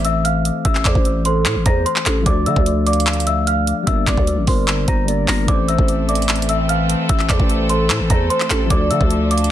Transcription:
Already playing: A1 E3 A3 C4 A4 C5 E5
0.05 E5 E6, closed hi-hat
0.25 F5 F6, closed hi-hat
0.45 closed hi-hat
0.65 A1 E5 E6, kick, closed hi-hat
0.75 clap
0.85 E2 C5 D5 D6, kick, clap, closed hi-hat
0.95 A1, kick
1.05 closed hi-hat
1.25 A4 C5 C6, closed hi-hat
1.46 A2, clap, closed hi-hat
1.56 A1
1.66 E2 C5 A#5 A#6, kick, closed hi-hat
1.86 C5 C6, closed hi-hat
1.96 clap
2.06 A1 A4, clap, closed hi-hat
2.21 F3 A3
2.26 D2 D4 A4 D5 D6, kick, closed hi-hat
2.30 D5
2.46 D3 E5 E6, closed hi-hat
2.56 D2, kick
2.66 closed hi-hat
2.86 D5 F5 D6, closed hi-hat
2.93 closed hi-hat
3.00 closed hi-hat
3.07 clap, closed hi-hat
3.13 closed hi-hat
3.20 closed hi-hat
3.27 E5 E6, closed hi-hat
3.47 F5 F6, closed hi-hat
3.67 closed hi-hat
3.83 G3 A#3 E6
3.87 G1 D4 A#4 E5, kick, closed hi-hat
3.93 D5
4.07 G1 D5 D6, kick, clap, closed hi-hat
4.17 D2, kick
4.27 closed hi-hat
4.38 A1
4.47 G1 A#4 C5 C6, kick, open hi-hat
4.68 clap, closed hi-hat
4.87 G1 C5 A#5 A#6, kick, closed hi-hat
5.05 G3 A#3 D4 A#4 D5, closed hi-hat
5.10 D5
5.28 G1 A#4 A#5 A#6, clap, open hi-hat
5.44 E3 A3
5.48 A1 E3 A3 C4 A4 D5 D6, kick, closed hi-hat
5.53 C5
5.68 E5 E6, closed hi-hat
5.79 A1, kick
5.88 closed hi-hat
6.09 D5 E5 D6, closed hi-hat
6.15 closed hi-hat
6.22 closed hi-hat
6.29 clap, closed hi-hat
6.36 closed hi-hat
6.42 closed hi-hat
6.49 E5 E6, closed hi-hat
6.69 F5 F6, closed hi-hat
6.90 closed hi-hat
7.09 A1 E5 E6, kick, closed hi-hat
7.19 clap
7.29 E2 C5 D5 D6, kick, clap, closed hi-hat
7.40 A1, kick
7.49 closed hi-hat
7.69 A4 C5 C6, closed hi-hat
7.90 A2, clap, closed hi-hat
8.00 A1
8.10 E2 C5 A#5 A#6, kick, closed hi-hat
8.30 C5 C6, closed hi-hat
8.40 clap
8.50 A1 A4, clap, closed hi-hat
8.65 F3 A3
8.70 D2 F3 D4 A4 D5 D6, kick, closed hi-hat
8.75 D5
8.91 D3 E5 E6, closed hi-hat
9.01 D2, kick
9.11 closed hi-hat
9.31 D5 F5 D6, closed hi-hat
9.38 closed hi-hat
9.44 closed hi-hat

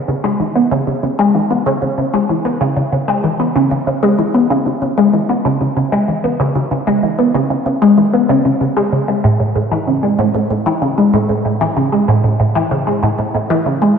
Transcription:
0.08 C#3
0.24 G#3
0.40 E3
0.56 B3
0.71 C#3
0.87 C#3
1.03 C#3
1.19 G#3
1.35 E3
1.51 B3
1.66 C#3
1.82 C#3
1.98 C#3
2.14 G#3
2.29 E3
2.45 B3
2.61 C#3
2.77 C#3
2.93 C#3
3.08 G#3
3.24 E3
3.40 B3
3.56 C#3
3.71 C#3
3.87 C#3
4.03 G#3
4.19 E3
4.34 B3
4.50 C#3
4.66 C#3
4.82 C#3
4.98 G#3
5.13 E3
5.29 B3
5.45 C#3
5.61 C#3
5.77 C#3
5.92 G#3
6.08 E3
6.24 B3
6.40 C#3
6.55 C#3
6.71 C#3
6.87 G#3
7.03 E3
7.19 B3
7.35 C#3
7.50 C#3
7.66 C#3
7.82 G#3
7.98 E3
8.13 B3
8.29 C#3
8.45 C#3
8.61 C#3
8.77 G#3
8.92 C#3
9.08 G#3
9.24 A2
9.40 A2
9.56 A2
9.72 E3
9.87 C#3
10.03 G#3
10.19 A2
10.35 A2
10.51 A2
10.66 E3
10.82 C#3
10.98 G#3
11.14 A2
11.29 A2
11.45 A2
11.61 E3
11.77 C#3
11.92 G#3
12.08 A2
12.24 A2
12.40 A2
12.55 E3
12.71 C#3
12.87 G#3
13.03 A2
13.19 A2
13.35 A2
13.50 E3
13.66 C#3
13.82 G#3

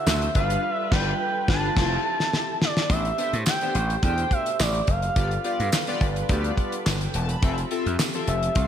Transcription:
Already playing: D3 A3 C4 E4 F#4 E5
0.06 D2 A3 D4 F#4 C5, snare, clap, tambourine
0.22 closed hi-hat
0.34 G1 G3 D4 F4 A4 B4 F5, kick, closed hi-hat
0.50 closed hi-hat
0.74 E5
0.91 G1 G3 D4 F4 B4 G5, kick, snare, crash
1.48 G1 G3 D4 F4 B4 A5, kick, snare
1.76 F1 F3 A3 C4 E4 F4 G4 C5, kick, snare, crash
2.20 snare
2.33 snare
2.62 D5, snare
2.77 snare
2.90 A1 A3 B3 D4 G4 C5 E5, kick, closed hi-hat
3.05 closed hi-hat
3.18 B3 D4 G4 C5 E5, closed hi-hat
3.33 A2, closed hi-hat
3.46 G5, snare, clap, tambourine
3.61 B3 D4 G4 C5, closed hi-hat
3.75 A1, closed hi-hat
3.90 closed hi-hat
4.03 E2 B2 D4 G4 C5 G5, kick, closed hi-hat
4.18 closed hi-hat
4.31 E5, kick, closed hi-hat
4.46 closed hi-hat
4.59 A1 D5, snare, clap, tambourine
4.74 closed hi-hat
4.87 F#1 F5, kick, closed hi-hat
5.02 closed hi-hat
5.16 G1 G3 B3 D4 F4 G4 A4 B4 D5, kick, closed hi-hat
5.31 closed hi-hat
5.44 B3 F4 G4 D5, closed hi-hat
5.60 G2, closed hi-hat
5.72 snare, clap, tambourine
5.87 B3 F4 G4 D5, closed hi-hat
6.01 G1, kick, closed hi-hat
6.16 closed hi-hat
6.29 D2 B3 F4 G4 D5, kick, closed hi-hat
6.44 closed hi-hat
6.57 kick, closed hi-hat
6.72 closed hi-hat
6.86 G1, snare, clap, tambourine
7.01 G5, closed hi-hat
7.14 E1 A5, closed hi-hat
7.29 B5, closed hi-hat
7.42 F1 F3 C4 F4 G4 A4 E5, kick, closed hi-hat
7.58 closed hi-hat
7.71 C4 F4 A4 E5, closed hi-hat
7.86 F2, closed hi-hat
7.99 snare, clap, tambourine
8.13 C4 F4 A4 E5, closed hi-hat
8.27 F1 E5, closed hi-hat
8.43 closed hi-hat
8.55 C2 C4 F4 A4 F5, kick, closed hi-hat

